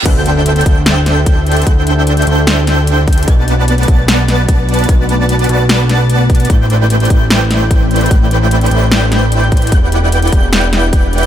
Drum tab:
CC |x-------------------------------|--------------------------------|--------------------------------|--------------------------------|
HH |x---x---x-xxx---x---x---x---xxxx|x---x---x-xxx---x---x---x---xxxx|x---x---x-xxx---x---x---x---xxxx|x---x---x-xxx---x---x---x---xxxx|
SD |----------------o---o-----------|----------------o---o-----------|----------------o---o-----------|----------------o---o-----------|
BD |o-----------o-----------o-------|o---------------------------o---|o-----------o-----------o-------|o---------------------------o---|

CC |--------------------------------|--------------------------------|--------------------------------|
HH |x---x---x-xxx---x---x---x---xxxx|x---x---x-xxx---x---x---x---xxxx|x---x---x-xxx---x---x---x---xxx-|
SD |----------------o---o-----------|----------------o---o-----------|----------------o---o-----------|
BD |o-----------o-----------o-------|o---------------------------o---|o-----------o-----------o-------|